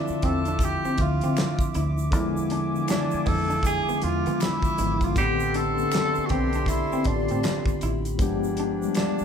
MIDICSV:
0, 0, Header, 1, 10, 480
1, 0, Start_track
1, 0, Key_signature, 0, "minor"
1, 0, Tempo, 759494
1, 1339, Time_signature, 4, 2, 24, 8
1, 5845, End_track
2, 0, Start_track
2, 0, Title_t, "Woodwind section"
2, 0, Program_c, 0, 71
2, 0, Note_on_c, 0, 62, 82
2, 0, Note_on_c, 0, 76, 80
2, 0, Note_on_c, 0, 84, 85
2, 0, Note_on_c, 0, 86, 96
2, 1322, Note_off_c, 0, 84, 0
2, 1323, Note_off_c, 0, 62, 0
2, 1335, Note_on_c, 0, 77, 85
2, 1338, Note_on_c, 0, 80, 81
2, 3235, Note_off_c, 0, 76, 0
2, 3235, Note_off_c, 0, 86, 0
2, 3238, Note_off_c, 0, 77, 0
2, 3239, Note_off_c, 0, 80, 0
2, 3261, Note_on_c, 0, 83, 82
2, 3262, Note_on_c, 0, 67, 90
2, 3262, Note_on_c, 0, 74, 84
2, 3265, Note_on_c, 0, 84, 101
2, 5068, Note_off_c, 0, 67, 0
2, 5068, Note_off_c, 0, 74, 0
2, 5068, Note_off_c, 0, 84, 0
2, 5176, Note_on_c, 0, 77, 82
2, 5178, Note_on_c, 0, 79, 74
2, 5178, Note_on_c, 0, 80, 86
2, 5845, Note_off_c, 0, 77, 0
2, 5845, Note_off_c, 0, 79, 0
2, 5845, Note_off_c, 0, 80, 0
2, 5845, Note_off_c, 0, 83, 0
2, 5845, End_track
3, 0, Start_track
3, 0, Title_t, "Tenor saxophone"
3, 0, Program_c, 1, 66
3, 0, Note_on_c, 1, 62, 93
3, 157, Note_on_c, 1, 69, 105
3, 167, Note_off_c, 1, 62, 0
3, 401, Note_on_c, 1, 67, 108
3, 411, Note_off_c, 1, 69, 0
3, 637, Note_on_c, 1, 65, 94
3, 647, Note_off_c, 1, 67, 0
3, 1108, Note_off_c, 1, 65, 0
3, 1833, Note_on_c, 1, 62, 102
3, 2071, Note_on_c, 1, 69, 114
3, 2080, Note_off_c, 1, 62, 0
3, 2305, Note_off_c, 1, 69, 0
3, 2312, Note_on_c, 1, 68, 116
3, 2549, Note_on_c, 1, 65, 101
3, 2559, Note_off_c, 1, 68, 0
3, 2791, Note_on_c, 1, 64, 109
3, 2801, Note_off_c, 1, 65, 0
3, 3188, Note_on_c, 1, 65, 95
3, 3197, Note_off_c, 1, 64, 0
3, 3268, Note_off_c, 1, 65, 0
3, 3272, Note_on_c, 1, 67, 120
3, 3513, Note_on_c, 1, 69, 120
3, 3523, Note_off_c, 1, 67, 0
3, 3954, Note_on_c, 1, 66, 73
3, 3964, Note_off_c, 1, 69, 0
3, 3985, Note_on_c, 1, 67, 94
3, 3994, Note_off_c, 1, 66, 0
3, 4228, Note_on_c, 1, 64, 102
3, 4237, Note_off_c, 1, 67, 0
3, 4466, Note_on_c, 1, 62, 88
3, 4476, Note_off_c, 1, 64, 0
3, 4942, Note_off_c, 1, 62, 0
3, 5666, Note_on_c, 1, 62, 102
3, 5845, Note_off_c, 1, 62, 0
3, 5845, End_track
4, 0, Start_track
4, 0, Title_t, "Horn section"
4, 0, Program_c, 2, 61
4, 0, Note_on_c, 2, 65, 73
4, 0, Note_on_c, 2, 69, 83
4, 0, Note_on_c, 2, 76, 68
4, 1073, Note_off_c, 2, 65, 0
4, 1073, Note_off_c, 2, 69, 0
4, 1073, Note_off_c, 2, 76, 0
4, 1338, Note_on_c, 2, 53, 69
4, 1338, Note_on_c, 2, 62, 81
4, 1338, Note_on_c, 2, 80, 78
4, 2993, Note_off_c, 2, 53, 0
4, 2993, Note_off_c, 2, 62, 0
4, 2993, Note_off_c, 2, 80, 0
4, 3258, Note_on_c, 2, 69, 91
4, 3259, Note_on_c, 2, 52, 76
4, 3259, Note_on_c, 2, 62, 74
4, 4913, Note_off_c, 2, 62, 0
4, 4913, Note_off_c, 2, 69, 0
4, 4914, Note_off_c, 2, 52, 0
4, 5176, Note_on_c, 2, 53, 76
4, 5176, Note_on_c, 2, 62, 80
4, 5177, Note_on_c, 2, 56, 77
4, 5845, Note_off_c, 2, 53, 0
4, 5845, Note_off_c, 2, 56, 0
4, 5845, Note_off_c, 2, 62, 0
4, 5845, End_track
5, 0, Start_track
5, 0, Title_t, "Clean electric guitar"
5, 0, Program_c, 3, 27
5, 148, Note_on_c, 3, 60, 81
5, 265, Note_off_c, 3, 60, 0
5, 304, Note_on_c, 3, 62, 84
5, 369, Note_off_c, 3, 62, 0
5, 539, Note_on_c, 3, 60, 88
5, 606, Note_off_c, 3, 60, 0
5, 781, Note_on_c, 3, 60, 84
5, 848, Note_off_c, 3, 60, 0
5, 1107, Note_on_c, 3, 64, 90
5, 1225, Note_off_c, 3, 64, 0
5, 1590, Note_on_c, 3, 62, 83
5, 1707, Note_off_c, 3, 62, 0
5, 2060, Note_on_c, 3, 59, 85
5, 2180, Note_off_c, 3, 59, 0
5, 2212, Note_on_c, 3, 62, 84
5, 2282, Note_off_c, 3, 62, 0
5, 2458, Note_on_c, 3, 59, 94
5, 2526, Note_off_c, 3, 59, 0
5, 2698, Note_on_c, 3, 59, 86
5, 2766, Note_off_c, 3, 59, 0
5, 3026, Note_on_c, 3, 64, 93
5, 3144, Note_off_c, 3, 64, 0
5, 3509, Note_on_c, 3, 62, 85
5, 3626, Note_off_c, 3, 62, 0
5, 3986, Note_on_c, 3, 60, 93
5, 4104, Note_off_c, 3, 60, 0
5, 4143, Note_on_c, 3, 62, 86
5, 4209, Note_off_c, 3, 62, 0
5, 4380, Note_on_c, 3, 60, 94
5, 4447, Note_off_c, 3, 60, 0
5, 4621, Note_on_c, 3, 60, 87
5, 4688, Note_off_c, 3, 60, 0
5, 4949, Note_on_c, 3, 64, 97
5, 5066, Note_off_c, 3, 64, 0
5, 5433, Note_on_c, 3, 62, 85
5, 5548, Note_off_c, 3, 62, 0
5, 5845, End_track
6, 0, Start_track
6, 0, Title_t, "Tine electric piano"
6, 0, Program_c, 4, 4
6, 0, Control_c, 4, 64, 127
6, 0, Note_on_c, 4, 50, 76
6, 0, Note_on_c, 4, 53, 102
6, 0, Note_on_c, 4, 57, 67
6, 0, Note_on_c, 4, 60, 62
6, 0, Note_on_c, 4, 64, 78
6, 0, Note_on_c, 4, 65, 67
6, 509, Note_off_c, 4, 50, 0
6, 513, Note_off_c, 4, 65, 0
6, 516, Note_off_c, 4, 57, 0
6, 521, Note_off_c, 4, 60, 0
6, 525, Note_off_c, 4, 64, 0
6, 612, Note_on_c, 4, 50, 74
6, 622, Note_off_c, 4, 53, 0
6, 622, Note_on_c, 4, 53, 64
6, 629, Note_on_c, 4, 57, 63
6, 635, Note_on_c, 4, 60, 72
6, 641, Note_on_c, 4, 76, 82
6, 1251, Note_off_c, 4, 50, 0
6, 1255, Note_off_c, 4, 53, 0
6, 1259, Note_off_c, 4, 57, 0
6, 1262, Note_off_c, 4, 60, 0
6, 1265, Note_off_c, 4, 76, 0
6, 1333, Note_on_c, 4, 50, 126
6, 1341, Note_on_c, 4, 53, 108
6, 1346, Control_c, 4, 64, 0
6, 1347, Note_on_c, 4, 56, 114
6, 1355, Note_on_c, 4, 59, 107
6, 1361, Note_on_c, 4, 64, 127
6, 1469, Control_c, 4, 64, 127
6, 1655, Note_off_c, 4, 50, 0
6, 1659, Note_off_c, 4, 53, 0
6, 1662, Note_off_c, 4, 56, 0
6, 1666, Note_off_c, 4, 59, 0
6, 1669, Note_off_c, 4, 64, 0
6, 1725, Note_on_c, 4, 50, 72
6, 1730, Note_on_c, 4, 53, 62
6, 1739, Note_on_c, 4, 52, 63
6, 1748, Note_on_c, 4, 59, 60
6, 1756, Note_on_c, 4, 62, 65
6, 1773, Note_off_c, 4, 62, 0
6, 1797, Note_on_c, 4, 64, 77
6, 2431, Note_off_c, 4, 50, 0
6, 2433, Note_off_c, 4, 53, 0
6, 2437, Note_off_c, 4, 52, 0
6, 2442, Note_off_c, 4, 59, 0
6, 2466, Note_off_c, 4, 64, 0
6, 2529, Note_on_c, 4, 50, 69
6, 2537, Note_on_c, 4, 53, 65
6, 2545, Note_on_c, 4, 56, 68
6, 2551, Note_on_c, 4, 59, 70
6, 2561, Note_on_c, 4, 65, 83
6, 2957, Note_off_c, 4, 50, 0
6, 2961, Note_off_c, 4, 53, 0
6, 2965, Note_off_c, 4, 56, 0
6, 2968, Note_off_c, 4, 59, 0
6, 2973, Note_off_c, 4, 65, 0
6, 3011, Note_on_c, 4, 50, 79
6, 3019, Note_on_c, 4, 53, 74
6, 3027, Note_on_c, 4, 56, 74
6, 3037, Note_on_c, 4, 59, 73
6, 3043, Note_on_c, 4, 64, 87
6, 3227, Note_off_c, 4, 50, 0
6, 3231, Note_off_c, 4, 53, 0
6, 3234, Note_off_c, 4, 56, 0
6, 3240, Note_off_c, 4, 59, 0
6, 3242, Note_off_c, 4, 64, 0
6, 3252, Note_on_c, 4, 50, 97
6, 3262, Note_on_c, 4, 57, 90
6, 3267, Control_c, 4, 64, 0
6, 3270, Note_on_c, 4, 59, 98
6, 3275, Note_on_c, 4, 60, 98
6, 3283, Note_on_c, 4, 67, 115
6, 3360, Control_c, 4, 64, 127
6, 3574, Note_off_c, 4, 50, 0
6, 3580, Note_off_c, 4, 57, 0
6, 3584, Note_off_c, 4, 59, 0
6, 3586, Note_off_c, 4, 60, 0
6, 3590, Note_off_c, 4, 67, 0
6, 3650, Note_on_c, 4, 50, 72
6, 3656, Note_on_c, 4, 57, 70
6, 3664, Note_on_c, 4, 59, 73
6, 3670, Note_on_c, 4, 60, 64
6, 3680, Note_on_c, 4, 62, 81
6, 4353, Note_off_c, 4, 50, 0
6, 4356, Note_off_c, 4, 57, 0
6, 4360, Note_off_c, 4, 59, 0
6, 4363, Note_off_c, 4, 60, 0
6, 4368, Note_off_c, 4, 62, 0
6, 4456, Note_on_c, 4, 50, 76
6, 4463, Note_on_c, 4, 57, 68
6, 4470, Note_on_c, 4, 59, 68
6, 4478, Note_on_c, 4, 60, 65
6, 4486, Note_on_c, 4, 65, 62
6, 4524, Note_off_c, 4, 65, 0
6, 4527, Note_on_c, 4, 67, 85
6, 5092, Note_off_c, 4, 50, 0
6, 5096, Note_off_c, 4, 57, 0
6, 5100, Note_off_c, 4, 59, 0
6, 5104, Note_off_c, 4, 60, 0
6, 5128, Note_off_c, 4, 67, 0
6, 5168, Note_on_c, 4, 53, 112
6, 5176, Note_on_c, 4, 56, 103
6, 5182, Note_on_c, 4, 59, 105
6, 5187, Control_c, 4, 64, 0
6, 5189, Note_on_c, 4, 62, 101
6, 5195, Note_on_c, 4, 67, 127
6, 5302, Control_c, 4, 64, 127
6, 5492, Note_off_c, 4, 53, 0
6, 5496, Note_off_c, 4, 56, 0
6, 5499, Note_off_c, 4, 59, 0
6, 5503, Note_off_c, 4, 62, 0
6, 5506, Note_off_c, 4, 67, 0
6, 5561, Note_on_c, 4, 53, 71
6, 5569, Note_on_c, 4, 56, 67
6, 5575, Note_on_c, 4, 59, 66
6, 5581, Note_on_c, 4, 62, 65
6, 5589, Note_on_c, 4, 55, 85
6, 5845, Note_off_c, 4, 53, 0
6, 5845, Note_off_c, 4, 55, 0
6, 5845, Note_off_c, 4, 56, 0
6, 5845, Note_off_c, 4, 59, 0
6, 5845, Note_off_c, 4, 62, 0
6, 5845, End_track
7, 0, Start_track
7, 0, Title_t, "Fingered electric bass"
7, 0, Program_c, 5, 33
7, 152, Note_on_c, 5, 40, 97
7, 488, Note_off_c, 5, 40, 0
7, 626, Note_on_c, 5, 38, 99
7, 755, Note_off_c, 5, 38, 0
7, 780, Note_on_c, 5, 50, 103
7, 854, Note_off_c, 5, 50, 0
7, 1113, Note_on_c, 5, 38, 101
7, 1344, Note_off_c, 5, 38, 0
7, 1344, Note_on_c, 5, 40, 103
7, 1762, Note_off_c, 5, 40, 0
7, 2070, Note_on_c, 5, 41, 99
7, 2407, Note_off_c, 5, 41, 0
7, 2552, Note_on_c, 5, 40, 92
7, 2679, Note_off_c, 5, 40, 0
7, 2702, Note_on_c, 5, 52, 103
7, 2775, Note_off_c, 5, 52, 0
7, 3033, Note_on_c, 5, 32, 96
7, 3237, Note_off_c, 5, 32, 0
7, 3266, Note_on_c, 5, 33, 103
7, 3683, Note_off_c, 5, 33, 0
7, 3988, Note_on_c, 5, 35, 109
7, 4326, Note_off_c, 5, 35, 0
7, 4464, Note_on_c, 5, 33, 89
7, 4594, Note_off_c, 5, 33, 0
7, 4619, Note_on_c, 5, 45, 103
7, 4693, Note_off_c, 5, 45, 0
7, 4951, Note_on_c, 5, 33, 92
7, 5180, Note_off_c, 5, 33, 0
7, 5180, Note_on_c, 5, 31, 106
7, 5600, Note_off_c, 5, 31, 0
7, 5845, End_track
8, 0, Start_track
8, 0, Title_t, "Muted clean electric guitar strokes"
8, 627, Note_on_c, 9, 29, 44
8, 690, Note_off_c, 9, 29, 0
8, 1826, Note_on_c, 9, 29, 50
8, 1889, Note_off_c, 9, 29, 0
8, 2544, Note_on_c, 9, 29, 44
8, 2608, Note_off_c, 9, 29, 0
8, 3748, Note_on_c, 9, 29, 48
8, 3811, Note_off_c, 9, 29, 0
8, 4470, Note_on_c, 9, 29, 45
8, 4533, Note_off_c, 9, 29, 0
8, 5665, Note_on_c, 9, 29, 49
8, 5729, Note_off_c, 9, 29, 0
8, 5845, End_track
9, 0, Start_track
9, 0, Title_t, "Muted fingered electric bass strokes"
9, 61, Note_on_c, 9, 29, 50
9, 124, Note_off_c, 9, 29, 0
9, 1985, Note_on_c, 9, 29, 47
9, 2048, Note_off_c, 9, 29, 0
9, 3905, Note_on_c, 9, 29, 53
9, 3968, Note_off_c, 9, 29, 0
9, 4843, Note_on_c, 9, 29, 54
9, 4907, Note_off_c, 9, 29, 0
9, 5822, Note_on_c, 9, 29, 46
9, 5845, Note_off_c, 9, 29, 0
9, 5845, End_track
10, 0, Start_track
10, 0, Title_t, "Drums"
10, 48, Note_on_c, 9, 82, 46
10, 111, Note_off_c, 9, 82, 0
10, 141, Note_on_c, 9, 42, 69
10, 146, Note_on_c, 9, 36, 93
10, 204, Note_off_c, 9, 42, 0
10, 209, Note_off_c, 9, 36, 0
10, 286, Note_on_c, 9, 42, 35
10, 292, Note_on_c, 9, 82, 45
10, 350, Note_off_c, 9, 42, 0
10, 355, Note_off_c, 9, 82, 0
10, 372, Note_on_c, 9, 36, 98
10, 380, Note_on_c, 9, 42, 86
10, 384, Note_on_c, 9, 82, 68
10, 436, Note_off_c, 9, 36, 0
10, 444, Note_off_c, 9, 42, 0
10, 447, Note_off_c, 9, 82, 0
10, 537, Note_on_c, 9, 82, 49
10, 600, Note_off_c, 9, 82, 0
10, 617, Note_on_c, 9, 42, 69
10, 622, Note_on_c, 9, 36, 88
10, 680, Note_off_c, 9, 42, 0
10, 685, Note_off_c, 9, 36, 0
10, 766, Note_on_c, 9, 42, 37
10, 780, Note_on_c, 9, 82, 43
10, 830, Note_off_c, 9, 42, 0
10, 843, Note_off_c, 9, 82, 0
10, 864, Note_on_c, 9, 26, 61
10, 864, Note_on_c, 9, 42, 74
10, 864, Note_on_c, 9, 82, 63
10, 875, Note_on_c, 9, 38, 114
10, 878, Note_on_c, 9, 39, 103
10, 927, Note_off_c, 9, 26, 0
10, 927, Note_off_c, 9, 42, 0
10, 927, Note_off_c, 9, 82, 0
10, 938, Note_off_c, 9, 38, 0
10, 941, Note_off_c, 9, 39, 0
10, 1003, Note_on_c, 9, 36, 94
10, 1013, Note_on_c, 9, 82, 57
10, 1066, Note_off_c, 9, 36, 0
10, 1076, Note_off_c, 9, 82, 0
10, 1102, Note_on_c, 9, 42, 62
10, 1105, Note_on_c, 9, 82, 51
10, 1165, Note_off_c, 9, 42, 0
10, 1168, Note_off_c, 9, 82, 0
10, 1251, Note_on_c, 9, 82, 52
10, 1314, Note_off_c, 9, 82, 0
10, 1340, Note_on_c, 9, 36, 111
10, 1343, Note_on_c, 9, 42, 81
10, 1347, Note_on_c, 9, 82, 71
10, 1403, Note_off_c, 9, 36, 0
10, 1406, Note_off_c, 9, 42, 0
10, 1410, Note_off_c, 9, 82, 0
10, 1497, Note_on_c, 9, 82, 55
10, 1561, Note_off_c, 9, 82, 0
10, 1580, Note_on_c, 9, 42, 75
10, 1644, Note_off_c, 9, 42, 0
10, 1741, Note_on_c, 9, 82, 49
10, 1804, Note_off_c, 9, 82, 0
10, 1819, Note_on_c, 9, 42, 83
10, 1822, Note_on_c, 9, 26, 70
10, 1822, Note_on_c, 9, 82, 69
10, 1837, Note_on_c, 9, 38, 115
10, 1840, Note_on_c, 9, 39, 92
10, 1882, Note_off_c, 9, 42, 0
10, 1885, Note_off_c, 9, 26, 0
10, 1885, Note_off_c, 9, 82, 0
10, 1900, Note_off_c, 9, 38, 0
10, 1903, Note_off_c, 9, 39, 0
10, 1966, Note_on_c, 9, 82, 47
10, 2029, Note_off_c, 9, 82, 0
10, 2060, Note_on_c, 9, 46, 58
10, 2065, Note_on_c, 9, 36, 91
10, 2123, Note_off_c, 9, 46, 0
10, 2128, Note_off_c, 9, 36, 0
10, 2212, Note_on_c, 9, 82, 50
10, 2275, Note_off_c, 9, 82, 0
10, 2293, Note_on_c, 9, 36, 95
10, 2302, Note_on_c, 9, 42, 97
10, 2307, Note_on_c, 9, 82, 79
10, 2356, Note_off_c, 9, 36, 0
10, 2365, Note_off_c, 9, 42, 0
10, 2370, Note_off_c, 9, 82, 0
10, 2458, Note_on_c, 9, 82, 49
10, 2521, Note_off_c, 9, 82, 0
10, 2538, Note_on_c, 9, 42, 63
10, 2601, Note_off_c, 9, 42, 0
10, 2692, Note_on_c, 9, 42, 38
10, 2699, Note_on_c, 9, 82, 42
10, 2755, Note_off_c, 9, 42, 0
10, 2763, Note_off_c, 9, 82, 0
10, 2784, Note_on_c, 9, 26, 61
10, 2784, Note_on_c, 9, 82, 62
10, 2787, Note_on_c, 9, 42, 70
10, 2798, Note_on_c, 9, 38, 127
10, 2801, Note_on_c, 9, 39, 94
10, 2847, Note_off_c, 9, 26, 0
10, 2847, Note_off_c, 9, 82, 0
10, 2850, Note_off_c, 9, 42, 0
10, 2861, Note_off_c, 9, 38, 0
10, 2864, Note_off_c, 9, 39, 0
10, 2923, Note_on_c, 9, 36, 85
10, 2933, Note_on_c, 9, 82, 56
10, 2986, Note_off_c, 9, 36, 0
10, 2996, Note_off_c, 9, 82, 0
10, 3021, Note_on_c, 9, 82, 55
10, 3023, Note_on_c, 9, 42, 65
10, 3084, Note_off_c, 9, 82, 0
10, 3086, Note_off_c, 9, 42, 0
10, 3166, Note_on_c, 9, 36, 88
10, 3170, Note_on_c, 9, 82, 47
10, 3174, Note_on_c, 9, 42, 35
10, 3229, Note_off_c, 9, 36, 0
10, 3233, Note_off_c, 9, 82, 0
10, 3238, Note_off_c, 9, 42, 0
10, 3261, Note_on_c, 9, 36, 117
10, 3261, Note_on_c, 9, 82, 65
10, 3266, Note_on_c, 9, 42, 85
10, 3324, Note_off_c, 9, 36, 0
10, 3324, Note_off_c, 9, 82, 0
10, 3329, Note_off_c, 9, 42, 0
10, 3412, Note_on_c, 9, 82, 61
10, 3476, Note_off_c, 9, 82, 0
10, 3503, Note_on_c, 9, 42, 68
10, 3566, Note_off_c, 9, 42, 0
10, 3655, Note_on_c, 9, 82, 44
10, 3718, Note_off_c, 9, 82, 0
10, 3739, Note_on_c, 9, 26, 68
10, 3739, Note_on_c, 9, 82, 67
10, 3741, Note_on_c, 9, 42, 85
10, 3759, Note_on_c, 9, 38, 118
10, 3762, Note_on_c, 9, 39, 103
10, 3802, Note_off_c, 9, 26, 0
10, 3802, Note_off_c, 9, 82, 0
10, 3804, Note_off_c, 9, 42, 0
10, 3823, Note_off_c, 9, 38, 0
10, 3826, Note_off_c, 9, 39, 0
10, 3887, Note_on_c, 9, 82, 47
10, 3950, Note_off_c, 9, 82, 0
10, 3977, Note_on_c, 9, 42, 75
10, 3983, Note_on_c, 9, 36, 87
10, 4040, Note_off_c, 9, 42, 0
10, 4046, Note_off_c, 9, 36, 0
10, 4125, Note_on_c, 9, 42, 39
10, 4132, Note_on_c, 9, 82, 50
10, 4189, Note_off_c, 9, 42, 0
10, 4195, Note_off_c, 9, 82, 0
10, 4211, Note_on_c, 9, 36, 94
10, 4220, Note_on_c, 9, 42, 94
10, 4227, Note_on_c, 9, 82, 68
10, 4274, Note_off_c, 9, 36, 0
10, 4283, Note_off_c, 9, 42, 0
10, 4290, Note_off_c, 9, 82, 0
10, 4376, Note_on_c, 9, 82, 51
10, 4439, Note_off_c, 9, 82, 0
10, 4452, Note_on_c, 9, 42, 64
10, 4458, Note_on_c, 9, 36, 90
10, 4515, Note_off_c, 9, 42, 0
10, 4522, Note_off_c, 9, 36, 0
10, 4603, Note_on_c, 9, 42, 39
10, 4620, Note_on_c, 9, 82, 41
10, 4666, Note_off_c, 9, 42, 0
10, 4683, Note_off_c, 9, 82, 0
10, 4699, Note_on_c, 9, 42, 79
10, 4702, Note_on_c, 9, 26, 66
10, 4702, Note_on_c, 9, 82, 62
10, 4710, Note_on_c, 9, 38, 121
10, 4713, Note_on_c, 9, 39, 104
10, 4762, Note_off_c, 9, 42, 0
10, 4765, Note_off_c, 9, 26, 0
10, 4765, Note_off_c, 9, 82, 0
10, 4773, Note_off_c, 9, 38, 0
10, 4776, Note_off_c, 9, 39, 0
10, 4839, Note_on_c, 9, 36, 94
10, 4852, Note_on_c, 9, 82, 53
10, 4902, Note_off_c, 9, 36, 0
10, 4915, Note_off_c, 9, 82, 0
10, 4937, Note_on_c, 9, 42, 71
10, 4942, Note_on_c, 9, 82, 51
10, 5000, Note_off_c, 9, 42, 0
10, 5005, Note_off_c, 9, 82, 0
10, 5089, Note_on_c, 9, 42, 40
10, 5093, Note_on_c, 9, 82, 49
10, 5152, Note_off_c, 9, 42, 0
10, 5157, Note_off_c, 9, 82, 0
10, 5176, Note_on_c, 9, 36, 118
10, 5177, Note_on_c, 9, 42, 90
10, 5186, Note_on_c, 9, 82, 72
10, 5239, Note_off_c, 9, 36, 0
10, 5240, Note_off_c, 9, 42, 0
10, 5249, Note_off_c, 9, 82, 0
10, 5333, Note_on_c, 9, 82, 57
10, 5396, Note_off_c, 9, 82, 0
10, 5415, Note_on_c, 9, 42, 75
10, 5478, Note_off_c, 9, 42, 0
10, 5577, Note_on_c, 9, 82, 48
10, 5640, Note_off_c, 9, 82, 0
10, 5653, Note_on_c, 9, 42, 85
10, 5658, Note_on_c, 9, 26, 64
10, 5658, Note_on_c, 9, 82, 70
10, 5671, Note_on_c, 9, 38, 116
10, 5674, Note_on_c, 9, 39, 93
10, 5716, Note_off_c, 9, 42, 0
10, 5721, Note_off_c, 9, 26, 0
10, 5721, Note_off_c, 9, 82, 0
10, 5735, Note_off_c, 9, 38, 0
10, 5737, Note_off_c, 9, 39, 0
10, 5806, Note_on_c, 9, 82, 46
10, 5845, Note_off_c, 9, 82, 0
10, 5845, End_track
0, 0, End_of_file